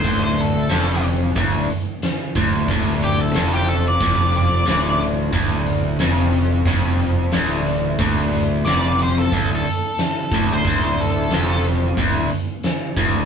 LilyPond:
<<
  \new Staff \with { instrumentName = "Lead electric guitar" } { \time 4/4 \key d \minor \tempo 4 = 90 c''16 c''16 a'4 r2 r8 | r8 g'16 a'8 g'16 a'16 d''8. d''4 r8 | r1 | r4 d''8 c''16 a'8 a'4. c''16~ |
c''16 c''16 a'4 r2 r8 | }
  \new Staff \with { instrumentName = "Overdriven electric guitar" } { \clef bass \time 4/4 \key d \minor d,4 f,4 d,8 r4 d,8 | d,4 f,4 f,4 d,4 | d,4 f,4 f,4 d,4 | d,4 f,4 d,8 r4 d,8 |
d,4 f,4 d,8 r4 d,8 | }
  \new Staff \with { instrumentName = "Fingered electric bass" } { \clef bass \time 4/4 \key d \minor d,,4 f,,4 d,,8 r4 d,,8 | d,,4 f,,4 f,,4 d,,4 | d,,4 f,,4 f,,4 d,,4 | d,,4 f,,4 d,,8 r4 d,,8 |
d,,4 f,,4 d,,8 r4 d,,8 | }
  \new DrumStaff \with { instrumentName = "Drums" } \drummode { \time 4/4 <hh bd>8 hh8 <hh sn>8 hh8 <hh bd>8 hh8 <hh sn>8 <hh bd>8 | <hh bd>8 hh8 <hh sn>8 hh8 <hh bd>8 hh8 <hh sn>8 hh8 | <hh bd>8 hh8 <hh sn>8 hh8 <hh bd>8 hh8 <hh sn>8 hh8 | <hh bd>8 hh8 <hh sn>8 hh8 <hh bd>8 hh8 <hh sn>8 <hh bd>8 |
<hh bd>8 hh8 <hh sn>8 hh8 <hh bd>8 hh8 <hh sn>8 <hh bd>8 | }
>>